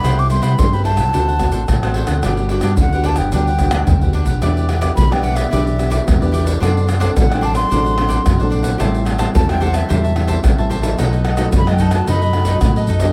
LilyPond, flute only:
\new Staff \with { instrumentName = "Flute" } { \time 4/4 \key g \major \tempo 4 = 110 b''16 d'''16 c'''16 b''16 c'''16 b''16 a''2 r8 | r4 fis''8 a''16 g''16 g''4. r8 | \key e \minor r4 b''16 g''16 fis''16 e''4.~ e''16 r8 | r4 fis''16 g''16 a''16 c'''4.~ c'''16 r8 |
r4 a''16 g''16 fis''16 e''4.~ e''16 r8 | r4 b''16 g''16 a''16 a''16 b''4. r8 | }